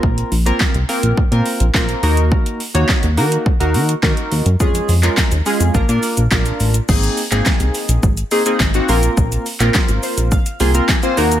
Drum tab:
CC |----------------|----------------|----------------|x---------------|
HH |-xox-xox-xox-xox|-xox-xox-xox-xox|-xox-xox-xox-xox|-xox-xox-xox-xox|
SH |----------------|----------------|xxxxxxxxxxxxxxxx|xxxxxxxxxxxxxxxx|
CP |----x-------x---|----x-------x---|---xx-------x---|---xx-------x---|
SD |----o-------o---|----o-------o---|----o-------o---|----o-------o---|
BD |o---o---o---o---|o---o---o---o---|o---o---o---o---|o---o---o---o---|

CC |----------------|
HH |-xox-xox-xox-xox|
SH |xxxxxxxxxxxxxxxx|
CP |---xx-------x---|
SD |----o-------o---|
BD |o---o---o---o---|